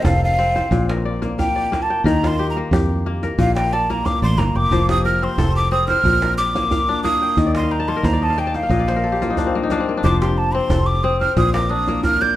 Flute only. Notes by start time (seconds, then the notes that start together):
0.02 F5 G5
0.24 F5
1.39 G5
1.82 A5
2.06 A#5
2.27 C6
2.50 A#5
3.39 F5
3.55 G5
3.73 A5
3.90 A#5
4.05 D6
4.23 C6
4.38 A#5
4.56 D6
4.89 D#6
5.05 F6
5.24 C6
5.56 D6
5.72 D#6
5.88 F6
6.37 D6
7.03 D#6
7.56 C6
7.71 A#5
7.88 C6
8.05 A#5
8.23 A5
8.39 G5
8.55 F5
10.03 D6
10.21 C6
10.38 A5
10.53 C6
10.86 D6
11.03 D#6
11.20 F6
11.37 D#6
11.53 D6
11.69 D#6
12.03 F6
12.21 G6